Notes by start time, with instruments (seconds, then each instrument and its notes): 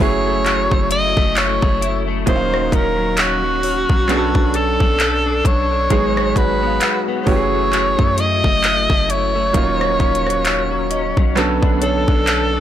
Already playing: clean electric guitar B3 F#4, celesta F#5
0.00 808-style bass F#1, clean electric guitar F#3, grand piano F#3 A3 C#4 E4 G#4, alto saxophone C#5, kick, open hi-hat
0.26 clean electric guitar A3
0.45 clean electric guitar F#3, clap, closed hi-hat
0.71 808-style bass F#1, clean electric guitar A3, kick
0.90 clean electric guitar E4, alto saxophone D#5, closed hi-hat
1.17 808-style bass F#1, clean electric guitar A3, kick
1.36 clean electric guitar E4, alto saxophone C#5, clap, closed hi-hat
1.62 808-style bass F#1, clean electric guitar A3, kick
1.81 clean electric guitar E4, closed hi-hat
2.07 clean electric guitar A3
2.26 808-style bass D#1, clean electric guitar D#3, grand piano F#3 A#3 C#4 D#4 E4, alto saxophone C5, kick, closed hi-hat
2.36 grand piano F5
2.53 clean electric guitar F#3, cross-stick
2.72 808-style bass D#1, clean electric guitar C#4, alto saxophone A#4, kick, closed hi-hat
2.98 clean electric guitar F#3
3.17 clean electric guitar C#4, alto saxophone F#4, clap, closed hi-hat
3.44 clean electric guitar F#3
3.63 clean electric guitar C#4, open hi-hat
3.90 808-style bass B1, clean electric guitar F#3, kick
4.08 grand piano F#3 B3 C#4 D4 G#4, clean electric guitar B3, clap, closed hi-hat
4.17 grand piano A4
4.35 808-style bass B1, clean electric guitar D4, kick
4.54 clean electric guitar A4, alto saxophone A4, closed hi-hat
4.80 808-style bass B1, clean electric guitar D4, kick
5.00 clean electric guitar A4, clap, closed hi-hat
5.26 clean electric guitar D4
5.45 808-style bass B1, clean electric guitar A4, alto saxophone C#5, kick, closed hi-hat
5.71 clean electric guitar D4
5.90 808-style bass G#1, grand piano F#3 G#3 B3 D#4 G#4, clean electric guitar G#3, kick, closed hi-hat
6.17 clean electric guitar B3, cross-stick
6.36 808-style bass G#1, clean electric guitar F#4, alto saxophone B4, celesta C#5, kick, closed hi-hat
6.62 clean electric guitar B3
6.67 celesta F5
6.81 clean electric guitar F#4, clap, closed hi-hat
6.91 celesta F#5
7.08 clean electric guitar B3
7.23 grand piano F#3, alto saxophone C5
7.27 808-style bass F#1, grand piano E3 A3 C#4 G4, clean electric guitar F#3, alto saxophone C#5, kick, open hi-hat
7.36 grand piano G#4
7.53 clean electric guitar A3
7.73 clean electric guitar F#3, clap, closed hi-hat
7.99 808-style bass F#2, clean electric guitar A3, kick
8.18 clean electric guitar E4, alto saxophone D#5, closed hi-hat
8.44 808-style bass F#1, clean electric guitar A3, kick
8.63 clean electric guitar E4, clap, closed hi-hat
8.90 808-style bass F#1, clean electric guitar A3, kick
9.09 clean electric guitar E4, alto saxophone C#5, closed hi-hat
9.35 clean electric guitar A3
9.53 808-style bass D#1, clean electric guitar D#3, grand piano F#3 A#3 C#4 D#4 F4, kick, closed hi-hat
9.81 clean electric guitar F#3, cross-stick
10.00 808-style bass D#1, clean electric guitar C#4, kick, closed hi-hat
10.15 closed hi-hat
10.26 clean electric guitar F#3, cross-stick
10.30 closed hi-hat
10.45 clean electric guitar C#4, clap, closed hi-hat
10.71 clean electric guitar F#3
10.90 clean electric guitar C#4, celesta D#5, closed hi-hat
11.17 808-style bass B1, clean electric guitar F#3, kick
11.35 grand piano D3 F#3 B3 C#4 A4, clean electric guitar B3, clap, closed hi-hat
11.62 808-style bass B1, clean electric guitar D4, kick
11.81 clean electric guitar A4, alto saxophone A4, celesta C#5, closed hi-hat
12.08 808-style bass B1, clean electric guitar D4, kick
12.27 clean electric guitar A4, clap, closed hi-hat
12.53 clean electric guitar D4